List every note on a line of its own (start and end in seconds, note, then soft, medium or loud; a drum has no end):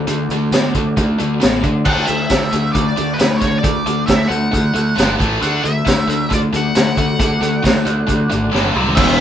0.00 1.83 A3 medium
0.00 1.83 F#4 medium
0.00 1.83 D5 medium
0.07 0.28 D2 medium
0.07 0.28 D3 medium
0.07 0.28 A3 medium
0.07 closed hi-hat medium
0.29 0.50 D2 medium
0.29 0.51 D3 medium
0.29 0.51 A3 medium
0.29 closed hi-hat medium
0.52 0.73 D2 medium
0.52 0.73 D3 medium
0.52 0.73 B3 medium
0.52 snare loud
0.52 closed hi-hat medium
0.52 tambourine loud
0.74 0.96 D2 medium
0.74 0.95 D3 medium
0.74 0.96 A3 medium
0.74 kick medium
0.74 closed hi-hat medium
0.97 1.18 D2 medium
0.97 1.17 D3 medium
0.97 1.18 A3 medium
0.97 kick medium
0.97 closed hi-hat medium
1.19 1.41 D2 medium
1.19 1.39 D3 medium
1.19 1.40 A3 medium
1.19 closed hi-hat medium
1.41 1.63 A1 medium
1.41 1.61 D3 medium
1.41 1.61 B3 medium
1.41 snare loud
1.41 closed hi-hat medium
1.41 tambourine loud
1.63 1.84 D3 medium
1.63 1.85 D3 medium
1.63 1.84 A3 medium
1.63 kick medium
1.63 closed hi-hat medium
1.85 2.03 D2 medium
1.85 2.07 D3 medium
1.85 2.07 A3 medium
1.85 2.07 D4 medium
1.85 2.06 F#5 medium
1.85 kick loud
1.85 crash loud
2.05 2.26 D2 medium
2.05 2.28 D3 medium
2.05 2.28 A3 medium
2.05 2.72 E5 medium
2.05 closed hi-hat medium
2.30 2.47 D2 medium
2.30 2.50 D3 medium
2.30 2.50 A3 medium
2.30 kick medium
2.30 snare medium
2.30 closed hi-hat medium
2.30 tambourine loud
2.43 snare soft
2.52 2.70 D2 medium
2.52 2.73 D3 medium
2.52 2.73 A3 medium
2.52 closed hi-hat medium
2.72 2.92 D2 medium
2.72 2.94 D3 medium
2.72 2.94 A3 medium
2.72 3.20 D5 medium
2.72 kick medium
2.72 closed hi-hat medium
2.96 3.15 D2 medium
2.96 3.17 D3 medium
2.96 3.17 A3 medium
2.96 closed hi-hat medium
3.14 3.40 B4 medium
3.19 3.37 D2 medium
3.19 3.39 D3 medium
3.19 3.39 A3 medium
3.19 snare loud
3.19 closed hi-hat medium
3.19 tambourine loud
3.37 3.61 D3 medium
3.37 3.58 C#5 medium
3.41 3.59 D2 medium
3.41 3.61 A3 medium
3.41 kick medium
3.41 snare soft
3.41 closed hi-hat medium
3.59 4.06 D5 medium
3.63 3.81 D2 medium
3.63 3.84 D3 medium
3.63 3.84 A3 medium
3.63 kick loud
3.63 closed hi-hat medium
3.86 4.04 D2 medium
3.86 4.06 D3 medium
3.86 4.06 A3 medium
3.86 closed hi-hat medium
4.06 4.26 D2 medium
4.06 4.28 D3 medium
4.06 4.28 A3 medium
4.06 4.30 E5 medium
4.06 kick medium
4.06 snare loud
4.06 closed hi-hat medium
4.06 tambourine loud
4.22 snare soft
4.27 4.48 D2 medium
4.27 4.50 D3 medium
4.27 4.50 A3 medium
4.27 5.14 F#5 medium
4.27 closed hi-hat medium
4.52 4.70 D2 medium
4.52 4.72 D3 medium
4.52 4.73 A3 medium
4.52 kick medium
4.52 closed hi-hat medium
4.74 4.92 D2 medium
4.74 4.94 D3 medium
4.74 4.95 A3 medium
4.74 closed hi-hat medium
4.96 5.15 G1 medium
4.96 5.17 G2 medium
4.96 5.18 D3 medium
4.96 5.18 G3 medium
4.96 snare loud
4.96 closed hi-hat medium
4.96 tambourine loud
5.18 5.37 A1 medium
5.18 5.40 A2 medium
5.18 5.40 E3 medium
5.18 5.40 A3 medium
5.18 kick loud
5.18 closed hi-hat medium
5.40 5.59 D2 medium
5.40 5.62 D3 medium
5.40 5.62 A3 medium
5.40 5.63 D4 loud
5.40 5.65 F#5 loud
5.40 closed hi-hat medium
5.45 8.51 A3 medium
5.45 8.51 F#4 medium
5.45 8.51 D5 medium
5.63 5.81 D2 medium
5.63 5.84 D3 medium
5.63 5.84 A3 medium
5.63 6.32 E5 medium
5.63 closed hi-hat medium
5.85 6.03 D2 medium
5.85 6.06 D3 medium
5.85 6.06 A3 medium
5.85 kick medium
5.85 snare loud
5.85 closed hi-hat medium
5.85 tambourine loud
6.08 6.25 D2 medium
6.08 6.28 D3 medium
6.08 6.28 A3 medium
6.08 closed hi-hat medium
6.30 6.48 D2 loud
6.30 6.50 D3 medium
6.30 6.51 A3 medium
6.30 6.39 D5 medium
6.30 kick medium
6.30 closed hi-hat medium
6.53 6.70 D2 medium
6.53 6.73 D3 medium
6.53 6.73 A3 medium
6.53 8.50 F#5 medium
6.53 closed hi-hat medium
6.75 6.92 D2 medium
6.75 6.95 D3 medium
6.75 6.95 A3 medium
6.75 snare loud
6.75 closed hi-hat loud
6.75 tambourine loud
6.97 7.14 D2 medium
6.97 7.17 D3 medium
6.97 7.18 A3 medium
6.97 kick medium
6.97 closed hi-hat medium
7.19 7.36 D2 medium
7.19 7.39 D3 medium
7.19 7.40 A3 medium
7.19 kick loud
7.19 closed hi-hat medium
7.41 7.59 D2 medium
7.41 7.61 D3 medium
7.41 7.62 A3 medium
7.41 closed hi-hat medium
7.63 7.81 D2 medium
7.63 7.83 D3 medium
7.63 7.84 A3 medium
7.63 kick medium
7.63 snare loud
7.63 closed hi-hat medium
7.63 tambourine medium
7.85 8.03 D2 medium
7.85 8.06 D3 medium
7.85 8.06 A3 medium
7.85 closed hi-hat medium
8.07 8.25 D2 loud
8.07 8.28 D3 medium
8.07 8.28 A3 medium
8.07 kick medium
8.07 closed hi-hat medium
8.30 8.48 G#1 medium
8.30 8.50 D3 medium
8.30 8.50 A3 medium
8.30 closed hi-hat medium
8.52 8.70 G1 medium
8.52 8.73 G2 medium
8.52 8.73 D3 medium
8.52 8.73 G3 loud
8.52 snare medium
8.65 high tom medium
8.74 8.92 C2 medium
8.74 8.95 C3 medium
8.74 8.95 G3 medium
8.74 8.96 C4 medium
8.74 mid tom medium
8.87 floor tom medium
8.95 9.20 E1 medium
8.95 9.20 E2 medium
8.95 9.20 B2 medium
8.95 9.20 E3 loud
8.95 9.20 G#3 loud
8.95 9.19 B3 medium
8.95 9.17 E4 loud
8.95 9.20 E5 medium
8.95 kick loud
8.95 crash loud
9.00 9.20 E3 medium